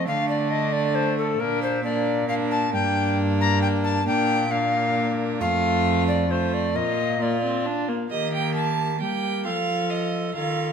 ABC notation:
X:1
M:3/4
L:1/8
Q:1/4=134
K:Bb
V:1 name="Recorder"
f d e d c A | B c d2 f a | g3 b g a | g2 f3 z |
f3 d c d | e2 d2 z2 | G4 G2 | A4 A2 |]
V:2 name="Violin"
D6 | D2 D2 D2 | D6 | D2 D4 |
F4 F2 | F2 F3 z | e g a2 g2 | f2 e2 f2 |]
V:3 name="Viola"
A,6 | B,2 B,2 B,2 | B,6 | B,2 B,4 |
A,4 A,2 | B,2 B, C D B, | B,4 B,2 | F4 F2 |]
V:4 name="Cello" clef=bass
D,6 | B,,6 | G,,6 | B,,6 |
F,,6 | B,,4- B,, z | E,4 G,2 | F,4 E,2 |]